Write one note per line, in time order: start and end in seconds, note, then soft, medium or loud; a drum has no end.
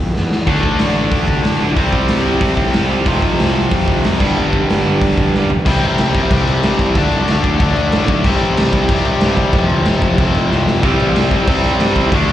0.00 0.13 F2 medium
0.14 0.43 E2 loud
0.14 snare medium
0.31 snare loud
0.47 0.61 D2 medium
0.47 1.11 D3 medium
0.47 1.12 A3 medium
0.47 1.13 D4 loud
0.47 kick loud
0.47 crash loud
0.63 0.77 D2 medium
0.63 kick medium
0.79 1.08 A1 medium
0.79 snare loud
0.79 open hi-hat medium
1.11 1.26 D2 medium
1.11 1.76 D3 medium
1.11 1.77 A3 medium
1.11 1.78 D4 medium
1.11 kick loud
1.11 open hi-hat medium
1.28 1.42 C3 medium
1.28 kick medium
1.44 1.58 A2 medium
1.44 snare loud
1.44 open hi-hat medium
1.60 1.75 B1 medium
1.60 1.76 D3 medium
1.60 1.77 A3 medium
1.60 1.76 D4 medium
1.76 1.91 C2 loud
1.76 2.40 C3 loud
1.76 2.41 G3 medium
1.76 2.42 C4 medium
1.76 kick loud
1.76 open hi-hat medium
1.93 2.07 C2 medium
1.93 kick medium
2.08 2.24 C2 loud
2.08 snare loud
2.08 open hi-hat medium
2.26 2.40 C2 medium
2.41 2.56 C2 medium
2.41 3.06 C3 medium
2.41 3.06 G3 medium
2.41 3.07 C4 medium
2.41 kick loud
2.41 open hi-hat medium
2.57 2.72 A2 medium
2.57 kick medium
2.73 3.02 C2 loud
2.73 snare loud
2.73 open hi-hat medium
2.90 3.07 C3 medium
2.90 3.06 G3 medium
2.90 3.06 C4 medium
3.05 3.20 F1 loud
3.05 3.69 F2 medium
3.05 3.71 C3 loud
3.05 3.71 F3 loud
3.05 kick loud
3.05 open hi-hat medium
3.22 3.37 F1 medium
3.22 kick medium
3.38 3.67 C2 loud
3.38 snare loud
3.38 open hi-hat medium
3.71 3.86 F1 medium
3.71 4.19 F2 medium
3.71 4.20 C3 medium
3.71 4.20 F3 medium
3.71 kick loud
3.71 open hi-hat medium
3.87 4.02 D2 medium
3.87 kick medium
4.04 4.21 C2 loud
4.04 snare loud
4.04 open hi-hat medium
4.19 4.34 G1 medium
4.19 4.84 G2 medium
4.19 4.85 D3 medium
4.19 4.84 G3 loud
4.19 kick loud
4.19 crash loud
4.36 4.50 G1 loud
4.53 4.67 G1 medium
4.53 kick medium
4.69 4.83 G1 loud
4.69 snare loud
4.69 open hi-hat medium
4.85 5.00 G1 medium
4.85 5.50 G2 medium
4.85 5.50 D3 medium
4.85 5.49 G3 medium
5.01 5.15 G1 medium
5.01 kick loud
5.01 open hi-hat medium
5.17 5.31 F2 medium
5.17 kick medium
5.34 5.62 G1 loud
5.34 5.50 G2 medium
5.34 5.50 D3 medium
5.34 5.50 G3 medium
5.34 snare medium
5.50 floor tom medium
5.66 5.81 C2 loud
5.66 6.14 C3 loud
5.66 6.14 G3 loud
5.66 6.14 C4 loud
5.66 kick loud
5.66 crash loud
5.66 crash medium
5.82 5.98 A1 medium
5.82 crash medium
5.98 6.14 C2 loud
5.98 snare loud
5.98 crash loud
6.14 6.29 C2 medium
6.14 6.63 C3 medium
6.14 6.63 G3 medium
6.14 6.62 C4 medium
6.14 kick loud
6.14 crash medium
6.30 6.46 C2 medium
6.30 6.94 C3 medium
6.30 6.95 G3 loud
6.30 6.96 C4 medium
6.30 kick loud
6.30 crash loud
6.47 6.62 C2 medium
6.47 crash medium
6.63 6.78 G2 loud
6.63 6.95 C3 medium
6.63 6.96 G3 medium
6.63 6.96 C4 medium
6.63 snare loud
6.63 crash medium
6.79 6.95 C2 loud
6.79 kick medium
6.79 crash medium
6.95 7.10 D2 loud
6.95 7.43 D3 medium
6.95 7.44 A3 loud
6.95 7.42 D4 loud
6.95 kick loud
6.95 crash medium
7.12 7.27 C2 medium
7.12 crash medium
7.28 7.43 D2 loud
7.28 snare loud
7.28 crash medium
7.44 7.59 D2 medium
7.44 7.91 D3 medium
7.44 7.92 A3 medium
7.44 7.91 D4 loud
7.44 kick loud
7.44 crash medium
7.59 7.75 D2 loud
7.59 8.23 D3 medium
7.59 8.24 A3 medium
7.59 kick loud
7.59 crash medium
7.63 8.25 D4 medium
7.76 7.92 D2 loud
7.76 crash medium
7.92 8.08 A2 medium
7.92 8.24 D3 medium
7.92 8.24 A3 medium
7.92 8.25 D4 loud
7.92 snare loud
7.92 crash medium
8.08 8.24 B1 loud
8.08 kick loud
8.08 crash medium
8.24 8.39 C2 loud
8.24 8.72 C3 medium
8.24 8.73 G3 loud
8.24 8.72 C4 loud
8.24 kick loud
8.24 crash loud
8.41 8.56 A1 medium
8.41 crash medium
8.57 8.72 C2 loud
8.57 snare loud
8.57 crash loud
8.72 8.88 C2 medium
8.72 9.20 C3 medium
8.72 9.21 G3 medium
8.72 9.23 C4 medium
8.72 kick medium
8.72 crash medium
8.89 9.04 C2 medium
8.89 9.53 C3 medium
8.89 9.54 G3 medium
8.89 kick loud
8.89 crash loud
8.93 10.86 C4 medium
9.05 9.20 C2 loud
9.05 crash medium
9.21 9.37 G2 loud
9.21 9.53 C3 medium
9.21 9.54 G3 medium
9.21 10.85 C4 medium
9.21 snare loud
9.21 crash medium
9.37 9.53 C2 loud
9.37 kick medium
9.37 crash medium
9.53 9.68 F1 loud
9.53 10.01 F2 medium
9.53 10.02 C3 loud
9.53 10.01 F3 loud
9.53 kick loud
9.53 crash medium
9.69 9.84 D2 loud
9.69 crash medium
9.85 10.01 F1 loud
9.85 snare loud
9.85 crash medium
10.01 10.17 F1 medium
10.01 10.49 F2 medium
10.01 10.50 C3 medium
10.01 10.50 F3 medium
10.01 kick loud
10.01 crash medium
10.18 10.33 F1 medium
10.18 10.82 F2 medium
10.18 10.81 C3 medium
10.18 10.84 F3 medium
10.18 kick loud
10.18 crash medium
10.34 10.50 F1 loud
10.34 crash medium
10.50 10.66 C2 loud
10.50 10.82 F2 medium
10.50 10.81 C3 medium
10.50 10.83 F3 medium
10.50 snare medium
10.68 10.83 F1 loud
10.68 snare loud
10.82 10.98 C2 loud
10.82 11.30 C3 medium
10.82 11.31 G3 loud
10.82 11.30 C4 loud
10.82 kick loud
10.82 crash medium
11.00 11.15 A1 medium
11.00 crash medium
11.16 11.31 C2 loud
11.16 snare loud
11.16 crash loud
11.31 11.46 C2 medium
11.31 11.78 C3 medium
11.31 11.80 G3 medium
11.31 11.79 C4 loud
11.31 kick medium
11.31 crash medium
11.46 11.63 C2 loud
11.46 12.11 C3 medium
11.46 12.12 G3 loud
11.46 12.13 C4 medium
11.46 kick loud
11.46 crash loud
11.63 11.78 C2 loud
11.63 crash medium
11.80 11.95 G2 loud
11.80 12.11 C3 medium
11.80 12.12 G3 medium
11.80 12.12 C4 medium
11.80 snare loud
11.80 crash loud
11.96 12.11 C2 loud
11.96 12.13 C3 medium
11.96 12.12 G3 medium
11.96 12.12 C4 medium
11.96 kick medium
11.96 crash medium
12.11 12.27 D2 loud
12.11 12.32 D3 medium
12.11 12.32 A3 loud
12.11 12.32 D4 loud
12.11 kick loud
12.11 crash loud
12.27 12.32 C2 medium
12.27 crash medium